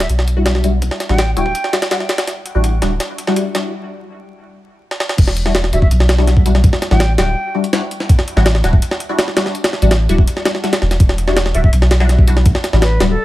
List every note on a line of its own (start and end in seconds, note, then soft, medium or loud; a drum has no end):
0.00 0.06 E5 medium
0.00 snare loud
0.00 closed hi-hat medium
0.09 0.90 B1 medium
0.09 closed hi-hat medium
0.19 snare medium
0.28 closed hi-hat medium
0.37 0.62 G3 medium
0.37 0.62 D4 medium
0.37 0.62 E4 medium
0.37 0.62 F#4 loud
0.46 snare loud
0.46 closed hi-hat medium
0.55 snare soft
0.64 1.07 G3 medium
0.64 1.07 D4 medium
0.64 1.07 E4 medium
0.64 1.07 F#4 medium
0.64 closed hi-hat medium
0.82 kick loud
0.82 closed hi-hat medium
0.91 snare medium
1.00 snare medium
1.00 closed hi-hat medium
1.09 1.35 A1 medium
1.09 1.19 G3 medium
1.09 1.19 D4 medium
1.09 1.19 E4 medium
1.09 1.19 F#4 loud
1.09 1.31 G5 medium
1.09 snare soft
1.18 snare loud
1.18 closed hi-hat medium
1.36 1.53 D1 loud
1.36 1.46 G3 loud
1.36 1.46 D4 medium
1.36 1.46 E4 medium
1.36 1.46 F#4 loud
1.36 1.73 G5 medium
1.36 closed hi-hat medium
1.46 kick medium
1.55 closed hi-hat medium
1.64 snare soft
1.73 1.82 G3 medium
1.73 1.82 D4 medium
1.73 1.82 E4 medium
1.73 1.82 F#4 medium
1.73 snare loud
1.73 closed hi-hat medium
1.82 snare loud
1.82 closed hi-hat medium
1.91 2.00 G3 medium
1.91 2.00 D4 medium
1.91 2.00 E4 medium
1.91 2.00 F#4 loud
1.91 snare loud
1.91 closed hi-hat medium
2.00 snare soft
2.09 snare loud
2.09 closed hi-hat medium
2.18 snare loud
2.18 closed hi-hat medium
2.27 snare soft
2.27 closed hi-hat medium
2.46 closed hi-hat medium
2.55 2.81 A1 medium
2.55 2.70 G3 medium
2.55 2.70 D4 medium
2.55 2.70 E4 medium
2.55 2.70 F#4 loud
2.64 closed hi-hat medium
2.82 2.98 D1 loud
2.82 2.91 G3 medium
2.82 2.91 D4 medium
2.82 2.91 E4 medium
2.82 2.91 F#4 medium
2.82 snare medium
2.82 closed hi-hat medium
3.00 snare medium
3.00 closed hi-hat medium
3.18 closed hi-hat medium
3.27 3.53 G3 loud
3.27 3.53 D4 medium
3.27 3.53 E4 medium
3.27 3.53 F#4 loud
3.27 snare medium
3.36 closed hi-hat medium
3.55 3.73 G3 medium
3.55 3.73 D4 medium
3.55 3.73 E4 medium
3.55 3.73 F#4 medium
3.55 snare medium
3.55 closed hi-hat medium
4.91 snare medium
5.00 snare medium
5.09 snare medium
5.18 5.72 E1 loud
5.18 kick loud
5.18 closed hi-hat medium
5.18 crash medium
5.28 snare medium
5.37 closed hi-hat medium
5.46 5.61 G3 medium
5.46 5.60 D4 medium
5.46 5.60 E4 medium
5.46 5.60 F#4 loud
5.46 snare medium
5.55 snare loud
5.55 closed hi-hat medium
5.64 snare medium
5.73 5.89 D1 loud
5.73 5.82 G3 medium
5.73 5.82 D4 medium
5.73 5.82 E4 medium
5.73 5.82 F#4 medium
5.73 5.79 E5 medium
5.73 closed hi-hat medium
5.82 5.88 E5 medium
5.82 kick medium
5.91 6.72 B1 medium
5.91 closed hi-hat loud
6.00 snare medium
6.09 snare loud
6.09 closed hi-hat medium
6.18 6.44 G3 loud
6.18 6.44 D4 medium
6.18 6.44 E4 medium
6.18 6.44 F#4 loud
6.18 snare soft
6.27 snare soft
6.27 closed hi-hat medium
6.37 kick medium
6.46 6.89 G3 medium
6.46 6.89 D4 medium
6.46 6.89 E4 medium
6.46 6.89 F#4 medium
6.46 closed hi-hat medium
6.55 snare medium
6.64 kick loud
6.64 closed hi-hat medium
6.73 snare medium
6.82 snare medium
6.82 closed hi-hat medium
6.91 7.17 A1 medium
6.91 7.00 G3 medium
6.91 7.00 D4 medium
6.91 7.00 E4 medium
6.91 7.00 F#4 loud
6.91 7.13 G5 medium
6.91 snare medium
7.00 snare loud
7.00 closed hi-hat medium
7.18 7.35 D1 loud
7.18 7.28 G3 loud
7.18 7.28 D4 medium
7.18 7.28 E4 medium
7.18 7.28 F#4 loud
7.18 7.55 G5 loud
7.18 snare loud
7.18 closed hi-hat medium
7.54 7.64 G3 medium
7.54 7.64 D4 medium
7.54 7.64 E4 medium
7.54 7.64 F#4 medium
7.64 closed hi-hat medium
7.73 7.82 G3 medium
7.73 7.82 D4 medium
7.73 7.82 E4 medium
7.73 7.82 F#4 medium
7.73 snare loud
7.73 closed hi-hat medium
7.91 closed hi-hat medium
8.00 snare soft
8.09 kick loud
8.09 closed hi-hat medium
8.19 snare medium
8.28 closed hi-hat medium
8.36 8.62 A1 medium
8.36 8.51 G3 medium
8.36 8.51 D4 medium
8.36 8.51 E4 medium
8.36 8.51 F#4 loud
8.36 snare medium
8.46 snare loud
8.46 closed hi-hat medium
8.55 snare medium
8.64 8.80 D1 loud
8.64 8.73 G3 medium
8.64 8.73 D4 medium
8.64 8.73 E4 medium
8.64 8.73 F#4 medium
8.64 snare soft
8.64 closed hi-hat medium
8.73 kick medium
8.82 closed hi-hat medium
8.91 snare medium
9.00 closed hi-hat medium
9.09 9.34 G3 loud
9.09 9.35 D4 medium
9.09 9.35 E4 medium
9.09 9.34 F#4 loud
9.19 snare loud
9.19 closed hi-hat medium
9.28 snare soft
9.37 9.80 G3 medium
9.37 9.80 D4 medium
9.37 9.80 E4 medium
9.37 9.80 F#4 medium
9.37 snare loud
9.37 closed hi-hat medium
9.46 snare soft
9.55 closed hi-hat medium
9.64 snare loud
9.64 closed hi-hat medium
9.73 snare soft
9.82 10.08 A1 medium
9.82 9.91 G3 medium
9.82 9.91 D4 medium
9.82 9.91 E4 medium
9.82 9.91 F#4 loud
9.82 closed hi-hat medium
9.91 snare loud
9.91 closed hi-hat medium
10.09 10.26 D1 loud
10.09 10.19 G3 loud
10.09 10.19 D4 loud
10.09 10.19 E4 medium
10.09 10.19 F#4 loud
10.09 closed hi-hat medium
10.18 kick loud
10.27 closed hi-hat loud
10.37 snare soft
10.45 10.55 G3 medium
10.45 10.55 D4 medium
10.45 10.55 E4 medium
10.45 10.55 F#4 medium
10.45 snare loud
10.45 closed hi-hat medium
10.55 snare soft
10.64 10.73 G3 medium
10.64 10.73 D4 medium
10.64 10.73 E4 medium
10.64 10.73 F#4 medium
10.64 snare soft
10.64 closed hi-hat medium
10.73 snare loud
10.73 closed hi-hat medium
10.82 10.99 E1 loud
10.82 snare medium
10.91 snare soft
10.91 closed hi-hat medium
11.00 11.53 E1 loud
11.00 kick loud
11.00 closed hi-hat medium
11.09 snare medium
11.18 closed hi-hat medium
11.28 11.42 G3 loud
11.28 11.42 D4 medium
11.28 11.42 E4 medium
11.28 11.42 F#4 loud
11.28 snare medium
11.36 snare loud
11.36 closed hi-hat medium
11.46 snare medium
11.54 11.71 D1 loud
11.54 11.64 G3 medium
11.54 11.64 D4 medium
11.54 11.64 E4 medium
11.54 11.64 F#4 medium
11.54 11.61 E5 medium
11.54 closed hi-hat medium
11.64 11.70 E5 medium
11.64 kick medium
11.73 12.53 B1 medium
11.73 closed hi-hat loud
11.82 snare medium
11.91 snare loud
11.91 closed hi-hat medium
12.00 12.25 G3 loud
12.00 12.25 D4 medium
12.00 12.25 E4 medium
12.00 12.25 F#4 loud
12.00 snare soft
12.09 snare soft
12.09 closed hi-hat medium
12.19 kick medium
12.28 12.71 G3 medium
12.28 12.71 D4 medium
12.28 12.71 E4 medium
12.28 12.71 F#4 medium
12.28 closed hi-hat medium
12.37 snare medium
12.46 kick loud
12.46 closed hi-hat medium
12.55 snare medium
12.64 snare medium
12.64 closed hi-hat medium
12.73 12.99 A1 medium
12.73 12.82 G3 medium
12.73 12.82 D4 medium
12.73 12.82 E4 medium
12.73 12.82 F#4 medium
12.73 snare medium
12.82 13.04 B4 medium
12.82 snare loud
12.82 closed hi-hat medium
13.00 13.17 D1 loud
13.00 13.10 G3 loud
13.00 13.10 D4 medium
13.00 13.10 E4 medium
13.00 13.10 F#4 loud
13.00 snare loud
13.00 closed hi-hat medium
13.10 13.25 A4 loud